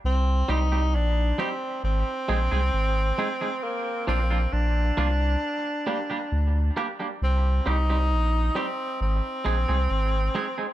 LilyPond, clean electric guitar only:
\new Staff \with { instrumentName = "Clean electric guitar" } { \time 4/4 \key c \minor \tempo 4 = 67 r8 <g c' ees' g'>16 <g c' ees' g'>16 r8 <g c' ees' g'>16 r8. <aes c' ees' aes'>16 <aes c' ees' aes'>16 r8 <aes c' ees' aes'>16 <aes c' ees' aes'>16 | r8 <f bes d' f'>16 <f bes d' f'>16 r8 <f bes d' f'>16 r8. <g bes d' g'>16 <g bes d' g'>16 r8 <g bes d' g'>16 <g bes d' g'>16 | r8 <g c' ees' g'>16 <g c' ees' g'>16 r8 <g c' ees' g'>16 r8. <aes c' ees' aes'>16 <aes c' ees' aes'>16 r8 <aes c' ees' aes'>16 <aes c' ees' aes'>16 | }